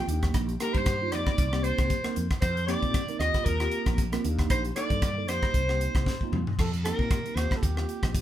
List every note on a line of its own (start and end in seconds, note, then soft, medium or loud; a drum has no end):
0.07 0.28 D#2 medium
0.07 0.53 A#3 medium
0.07 0.53 D4 medium
0.07 0.53 D#4 medium
0.07 0.53 G4 medium
0.07 closed hi-hat medium
0.23 kick medium
0.23 cross-stick medium
0.23 closed hi-hat soft
0.34 0.55 A#1 medium
0.34 kick medium
0.34 cross-stick medium
0.34 closed hi-hat medium
0.49 closed hi-hat soft
0.60 0.94 A#3 medium
0.60 0.94 D4 medium
0.60 0.94 D#4 medium
0.60 0.95 G4 loud
0.60 0.75 A#4 medium
0.60 0.77 A#4 medium
0.60 cross-stick medium
0.60 closed hi-hat medium
0.73 1.12 G2 medium
0.73 1.14 C5 medium
0.73 kick medium
0.73 closed hi-hat soft
0.77 1.15 C5 medium
0.86 kick loud
0.86 cross-stick medium
0.86 closed hi-hat medium
1.02 1.11 A#3 medium
1.02 1.11 D4 medium
1.02 1.11 D#4 medium
1.02 1.11 F4 medium
1.12 1.24 F2 medium
1.12 1.46 A#3 medium
1.12 1.46 C4 medium
1.12 1.46 D#4 medium
1.12 1.46 G4 medium
1.12 1.65 D5 loud
1.12 1.65 D5 medium
1.12 cross-stick medium
1.12 closed hi-hat soft
1.27 kick medium
1.27 cross-stick medium
1.38 1.70 C2 medium
1.38 kick medium
1.38 closed hi-hat medium
1.52 1.95 A#3 medium
1.52 1.95 C4 medium
1.52 1.95 D#4 medium
1.52 1.95 G4 medium
1.52 cross-stick medium
1.63 2.16 C5 medium
1.63 2.17 C5 medium
1.63 closed hi-hat soft
1.78 1.88 C2 medium
1.78 kick medium
1.78 cross-stick medium
1.78 closed hi-hat soft
1.90 kick medium
1.90 closed hi-hat medium
2.03 2.25 A#3 medium
2.03 2.25 C4 medium
2.03 2.26 D#4 medium
2.03 2.26 A#4 medium
2.03 muted fretless electric bass stroke soft
2.03 cross-stick medium
2.03 closed hi-hat soft
2.16 2.28 F2 medium
2.16 closed hi-hat medium
2.30 2.36 A#4 soft
2.30 kick medium
2.30 cross-stick medium
2.30 closed hi-hat soft
2.41 2.74 F2 medium
2.41 2.66 C5 medium
2.41 2.68 C5 medium
2.41 kick medium
2.41 cross-stick medium
2.41 closed hi-hat medium
2.57 closed hi-hat soft
2.67 3.01 A#3 medium
2.67 3.01 C4 medium
2.67 3.01 D#4 medium
2.67 3.01 G4 loud
2.67 3.16 D5 medium
2.67 3.18 D5 medium
2.67 cross-stick medium
2.67 closed hi-hat medium
2.82 3.03 A#2 medium
2.82 kick medium
2.82 closed hi-hat soft
2.94 kick loud
2.94 cross-stick medium
2.94 closed hi-hat medium
3.08 3.18 A#3 medium
3.08 3.19 C4 medium
3.08 3.19 D#4 medium
3.08 3.18 A#4 medium
3.08 closed hi-hat soft
3.19 3.31 D#2 medium
3.19 3.53 A#3 medium
3.19 3.54 C4 medium
3.19 3.54 F4 medium
3.19 3.54 G4 medium
3.19 3.46 D#5 loud
3.19 3.48 D#5 medium
3.19 cross-stick medium
3.19 closed hi-hat soft
3.34 kick medium
3.34 cross-stick medium
3.34 closed hi-hat soft
3.45 3.67 D#2 medium
3.45 3.98 A#4 medium
3.45 3.99 A#4 medium
3.45 kick medium
3.45 closed hi-hat medium
3.60 4.03 A#3 medium
3.60 4.03 C4 medium
3.60 4.03 F4 medium
3.60 4.03 G4 medium
3.60 cross-stick medium
3.60 closed hi-hat soft
3.72 closed hi-hat medium
3.86 4.16 A#1 medium
3.86 kick medium
3.86 cross-stick medium
3.86 closed hi-hat soft
3.98 kick medium
3.98 closed hi-hat medium
4.12 4.24 A#3 medium
4.12 4.25 C4 medium
4.12 4.24 F4 medium
4.12 4.24 A#4 medium
4.12 cross-stick medium
4.12 closed hi-hat soft
4.25 4.45 D#2 medium
4.25 4.69 A#3 medium
4.25 4.69 D4 medium
4.25 4.69 D#4 medium
4.25 4.69 G4 medium
4.25 closed hi-hat medium
4.39 kick medium
4.39 cross-stick medium
4.39 closed hi-hat soft
4.50 4.71 A#1 medium
4.50 4.62 C5 medium
4.50 4.60 C5 medium
4.50 kick medium
4.50 cross-stick medium
4.50 closed hi-hat medium
4.65 closed hi-hat soft
4.76 5.10 A#3 medium
4.76 5.10 D4 medium
4.76 5.10 D#4 medium
4.76 5.10 A4 loud
4.76 5.30 D5 loud
4.76 5.26 D5 medium
4.76 cross-stick medium
4.76 closed hi-hat medium
4.90 5.29 G2 medium
4.90 kick medium
4.90 closed hi-hat soft
5.02 kick loud
5.02 cross-stick medium
5.02 closed hi-hat medium
5.17 5.26 A#3 medium
5.17 5.26 D4 medium
5.17 5.26 D#4 medium
5.17 5.27 A4 medium
5.28 5.40 F2 medium
5.28 5.62 A#3 medium
5.28 5.62 C4 medium
5.28 5.62 D#4 medium
5.28 5.62 G4 medium
5.28 6.32 C5 medium
5.28 6.33 C5 medium
5.28 cross-stick medium
5.28 closed hi-hat medium
5.43 kick medium
5.43 cross-stick medium
5.54 5.86 C2 medium
5.54 kick medium
5.54 closed hi-hat medium
5.69 6.11 A#3 medium
5.69 6.12 C4 medium
5.69 6.12 D#4 medium
5.69 6.12 G4 medium
5.69 cross-stick medium
5.81 closed hi-hat medium
5.95 6.04 C2 medium
5.95 kick medium
5.95 cross-stick medium
5.95 closed hi-hat soft
6.06 kick medium
6.06 snare soft
6.21 6.43 A#3 medium
6.21 6.43 C4 medium
6.21 6.43 D#4 medium
6.21 6.43 F4 medium
6.21 muted fretless electric bass stroke soft
6.21 kick soft
6.32 6.43 F2 medium
6.32 mid tom medium
6.47 floor tom medium
6.59 6.91 F2 medium
6.59 6.71 A4 medium
6.59 kick medium
6.59 cross-stick medium
6.59 crash medium
6.74 closed hi-hat soft
6.84 7.18 A#3 medium
6.84 7.18 C4 medium
6.84 7.18 D#4 medium
6.84 7.18 G4 medium
6.84 7.37 A#4 medium
6.84 cross-stick medium
6.84 closed hi-hat medium
6.99 7.19 A#2 medium
6.99 kick medium
7.11 kick loud
7.11 cross-stick medium
7.11 closed hi-hat medium
7.26 7.35 A#3 medium
7.26 7.35 C4 medium
7.26 7.35 D#4 medium
7.26 7.35 G4 medium
7.26 closed hi-hat soft
7.36 7.47 D#2 medium
7.36 7.69 A#3 medium
7.36 7.69 C4 medium
7.36 7.70 F4 medium
7.36 7.70 G4 medium
7.36 7.58 C5 medium
7.36 cross-stick medium
7.36 closed hi-hat medium
7.51 kick medium
7.51 cross-stick medium
7.57 7.64 A4 soft
7.63 7.83 D#2 medium
7.63 8.14 G4 medium
7.63 kick medium
7.63 closed hi-hat medium
7.77 8.19 A#3 medium
7.77 8.19 C4 medium
7.77 8.19 F4 medium
7.77 8.19 G4 medium
7.77 cross-stick medium
7.89 closed hi-hat soft
8.03 8.21 A#1 medium
8.03 kick medium
8.03 cross-stick medium
8.03 closed hi-hat soft
8.15 kick loud
8.15 closed hi-hat medium